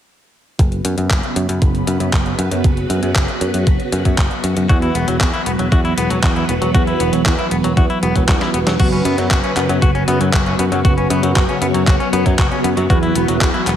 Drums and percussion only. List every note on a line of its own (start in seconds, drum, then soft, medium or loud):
0.59 kick loud
0.59 closed hi-hat soft
0.72 closed hi-hat soft
0.85 closed hi-hat medium
0.98 closed hi-hat medium
1.11 kick loud
1.11 clap loud
1.11 closed hi-hat medium
1.23 closed hi-hat soft
1.36 closed hi-hat medium
1.49 closed hi-hat medium
1.62 kick loud
1.62 closed hi-hat medium
1.75 closed hi-hat soft
1.87 closed hi-hat medium
2.00 closed hi-hat medium
2.13 kick loud
2.13 clap loud
2.13 closed hi-hat medium
2.26 closed hi-hat soft
2.39 closed hi-hat medium
2.51 closed hi-hat medium
2.64 kick loud
2.64 closed hi-hat soft
2.77 closed hi-hat soft
2.90 closed hi-hat medium
3.03 closed hi-hat soft
3.15 kick loud
3.15 clap loud
3.15 closed hi-hat soft
3.28 closed hi-hat soft
3.41 closed hi-hat medium
3.54 closed hi-hat medium
3.67 kick loud
3.67 closed hi-hat medium
3.80 closed hi-hat soft
3.92 closed hi-hat medium
4.05 kick medium
4.05 closed hi-hat medium
4.18 kick loud
4.18 clap loud
4.18 closed hi-hat medium
4.31 closed hi-hat soft
4.44 closed hi-hat medium
4.57 closed hi-hat soft
4.69 kick loud
4.69 closed hi-hat soft
4.82 closed hi-hat soft
4.95 closed hi-hat medium
5.08 closed hi-hat soft
5.21 kick loud
5.21 clap loud
5.21 closed hi-hat soft
5.33 closed hi-hat soft
5.46 closed hi-hat medium
5.59 closed hi-hat soft
5.72 kick loud
5.72 closed hi-hat soft
5.85 closed hi-hat soft
5.98 closed hi-hat medium
6.10 closed hi-hat soft
6.23 kick loud
6.23 clap loud
6.23 closed hi-hat medium
6.36 closed hi-hat soft
6.49 closed hi-hat medium
6.62 closed hi-hat soft
6.75 kick loud
6.75 closed hi-hat soft
6.87 closed hi-hat soft
7.00 closed hi-hat medium
7.13 closed hi-hat soft
7.26 kick loud
7.26 clap loud
7.26 closed hi-hat soft
7.39 closed hi-hat soft
7.51 closed hi-hat medium
7.64 closed hi-hat soft
7.77 kick loud
7.77 closed hi-hat soft
7.90 closed hi-hat soft
8.03 closed hi-hat medium
8.16 kick medium
8.16 closed hi-hat soft
8.28 kick loud
8.28 snare medium
8.28 clap loud
8.28 closed hi-hat soft
8.41 snare medium
8.41 closed hi-hat soft
8.54 closed hi-hat medium
8.67 snare medium
8.67 closed hi-hat soft
8.80 kick loud
8.80 closed hi-hat medium
8.80 crash medium
8.92 closed hi-hat soft
9.05 closed hi-hat medium
9.18 closed hi-hat medium
9.31 kick loud
9.31 clap loud
9.31 closed hi-hat medium
9.44 closed hi-hat soft
9.57 clap medium
9.57 closed hi-hat medium
9.69 closed hi-hat medium
9.82 kick loud
9.82 closed hi-hat medium
9.95 closed hi-hat soft
10.08 closed hi-hat medium
10.21 closed hi-hat medium
10.33 kick loud
10.33 clap loud
10.33 closed hi-hat medium
10.46 closed hi-hat soft
10.59 closed hi-hat loud
10.72 closed hi-hat medium
10.85 kick loud
10.85 closed hi-hat medium
10.98 closed hi-hat soft
11.10 closed hi-hat medium
11.23 closed hi-hat medium
11.36 kick loud
11.36 clap loud
11.36 closed hi-hat soft
11.49 closed hi-hat soft
11.62 closed hi-hat medium
11.74 closed hi-hat medium
11.87 kick loud
11.87 clap medium
11.87 closed hi-hat medium
12.00 closed hi-hat soft
12.13 closed hi-hat medium
12.26 kick medium
12.26 closed hi-hat medium
12.39 kick loud
12.39 clap loud
12.39 closed hi-hat medium
12.52 closed hi-hat soft
12.64 closed hi-hat medium
12.77 closed hi-hat soft
12.90 kick loud
12.90 closed hi-hat medium
13.03 closed hi-hat soft
13.15 closed hi-hat medium
13.28 closed hi-hat medium
13.41 kick loud
13.41 clap loud
13.41 closed hi-hat soft
13.54 closed hi-hat soft
13.67 clap medium
13.67 closed hi-hat medium